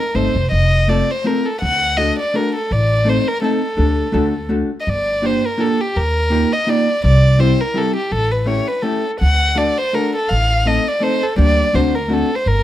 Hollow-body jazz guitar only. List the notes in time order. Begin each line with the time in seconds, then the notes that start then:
0.14 A3 C4 D#4 A4
0.88 A3 C4 F4 A4
1.24 A3 C4 F4 A4
1.97 A3 D4 F#4 A4
2.34 A3 D4 F#4 A4
3.05 A3 C4 D#4 A4
3.42 A3 C4 D#4 A4
3.77 A3 D4 G4 A4
4.12 A3 D4 F#4 A4
4.49 A3 D4 F#4 A4
5.22 A#3 D4 F4 G4
5.58 A#3 D4 F4 G4
6.30 A#3 D#4 F4 G4
6.67 A#3 D#4 F4 G4
7.39 G3 C4 E4 G4
7.74 G3 C4 E4 G4
8.46 A3 C#4 E4 G4
8.83 A3 C#4 E4 G4
9.55 A3 D4 F#4 A4
9.93 A3 D4 F#4 A4
10.66 A3 C4 D#4 A4
11.00 A3 C4 D#4 A4
11.36 G3 A#3 D4 G4
11.73 A3 C4 D4 F#4
12.08 A3 C4 D4 F#4